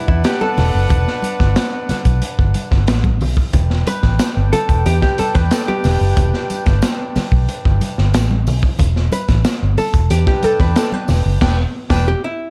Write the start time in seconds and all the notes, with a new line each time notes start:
Already playing: D4 B4 F#5
0.08 E2 E4, kick
0.24 G4, snare, closed hi-hat, muted conga
0.41 A4, high conga
0.57 E1, snare, open hi-hat, muted conga, low conga
0.75 F#1
0.90 E1, kick, closed hi-hat, muted conga, low conga
1.08 snare
1.22 closed hi-hat, high conga
1.40 G1, kick, snare
1.56 snare, closed hi-hat, muted conga
1.89 muted fingered electric bass stroke, snare, closed hi-hat, muted conga, high conga, low conga
2.05 B1, kick, closed hi-hat
2.22 closed hi-hat, muted conga
2.39 G1, kick
2.54 closed hi-hat, high conga
2.71 G1, kick, snare
2.87 A1, snare, closed hi-hat, muted conga
3.04 kick, high conga
3.21 B1, open hi-hat, low conga
3.37 kick
3.53 E1 D4 B4 G5, kick, closed hi-hat, tambourine, muted conga, low conga
3.70 snare
3.87 B4, closed hi-hat, tambourine, muted conga, high conga
4.03 A1, kick, snare
4.19 snare, closed hi-hat, tambourine, muted conga
4.37 G1
4.53 A4, closed hi-hat, tambourine, muted conga, high conga, low conga
4.69 E1, kick, closed hi-hat
4.86 E2 G4, closed hi-hat, tambourine, muted conga
5.02 G4, kick, snare
5.18 A4, muted fingered electric bass stroke, closed hi-hat, high conga
5.35 E2 B4, kick, snare
5.51 A4, snare, closed hi-hat, tambourine, muted conga
5.68 G4, high conga
5.84 E1, snare, open hi-hat, tambourine, muted conga, low conga
6.01 F#1
6.17 E1, kick, closed hi-hat, tambourine, muted conga, low conga
6.34 snare
6.50 closed hi-hat, tambourine, high conga
6.66 G1, kick, snare, closed hi-hat
6.82 snare, closed hi-hat, tambourine, muted conga
7.16 muted fingered electric bass stroke, snare, open hi-hat, tambourine, muted conga, high conga, low conga
7.32 B1, kick
7.48 closed hi-hat, tambourine, muted conga
7.65 G1, kick
7.81 closed hi-hat, muted conga, high conga
7.98 G1, snare
8.14 A1, snare, closed hi-hat, tambourine, muted conga
8.31 high conga
8.47 B1, open hi-hat, tambourine, muted conga, low conga
8.63 kick
8.79 E1, kick, closed hi-hat, muted conga, low conga
8.96 snare
9.12 B4, closed hi-hat, tambourine, muted conga, high conga
9.28 A1, kick, snare, closed hi-hat
9.44 snare, closed hi-hat, tambourine, muted conga
9.63 G1
9.77 A4, open hi-hat, tambourine, muted conga, high conga, low conga
9.94 E1, kick, closed hi-hat
10.10 E2 D4 G4 B4 G5, closed hi-hat, tambourine
10.27 G4, kick, snare
10.43 A4, muted fingered electric bass stroke, closed hi-hat, tambourine, muted conga, high conga
10.59 E2 B4, kick, snare
10.76 A4, snare, closed hi-hat, tambourine
10.92 B4, high conga
11.08 E1, snare, open hi-hat, tambourine, low conga
11.26 F#1
11.40 E1 D4 B4 G5, kick, snare, crash
11.90 E1 D4 B4 G5, kick, snare
12.08 G4
12.24 E4